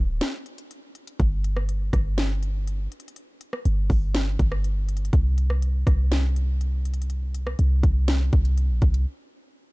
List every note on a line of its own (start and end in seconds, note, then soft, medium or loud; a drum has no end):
0.00 0.20 D1 loud
0.21 snare loud
0.21 closed hi-hat medium
0.46 closed hi-hat soft
0.58 closed hi-hat medium
0.71 closed hi-hat medium
0.95 closed hi-hat medium
1.07 closed hi-hat medium
1.20 1.90 G1 loud
1.20 kick loud
1.20 closed hi-hat medium
1.44 closed hi-hat medium
1.57 cross-stick loud
1.69 closed hi-hat medium
1.93 2.88 G1 loud
1.93 kick medium
1.93 cross-stick loud
1.93 closed hi-hat medium
2.18 snare loud
2.18 closed hi-hat medium
2.43 closed hi-hat medium
2.67 closed hi-hat medium
2.92 closed hi-hat medium
3.00 closed hi-hat medium
3.08 closed hi-hat medium
3.16 closed hi-hat medium
3.41 closed hi-hat medium
3.53 cross-stick loud
3.65 3.89 G1 loud
3.65 closed hi-hat medium
3.90 4.37 G1 loud
3.90 kick medium
3.90 open hi-hat medium
4.15 snare loud
4.15 closed hi-hat medium
4.39 5.10 G1 loud
4.39 kick medium
4.39 closed hi-hat medium
4.52 cross-stick loud
4.64 closed hi-hat medium
4.89 closed hi-hat medium
4.97 closed hi-hat medium
5.05 closed hi-hat medium
5.13 5.84 C2 loud
5.13 kick loud
5.13 closed hi-hat medium
5.38 closed hi-hat medium
5.50 cross-stick loud
5.62 closed hi-hat medium
5.87 7.55 C2 loud
5.87 kick medium
5.87 cross-stick loud
5.87 closed hi-hat medium
6.12 snare loud
6.12 closed hi-hat medium
6.36 closed hi-hat medium
6.61 closed hi-hat medium
6.85 closed hi-hat medium
6.94 closed hi-hat medium
7.02 closed hi-hat medium
7.10 closed hi-hat medium
7.35 closed hi-hat medium
7.47 cross-stick loud
7.59 7.83 C2 loud
7.59 closed hi-hat medium
7.83 8.31 C2 loud
7.83 kick medium
7.83 closed hi-hat medium
8.08 snare loud
8.08 closed hi-hat medium
8.33 8.71 C2 loud
8.33 kick medium
8.33 closed hi-hat soft
8.45 closed hi-hat medium
8.58 closed hi-hat medium
8.69 8.81 A#1 loud
8.82 9.06 C2 loud
8.82 kick medium
8.82 closed hi-hat medium
8.94 closed hi-hat medium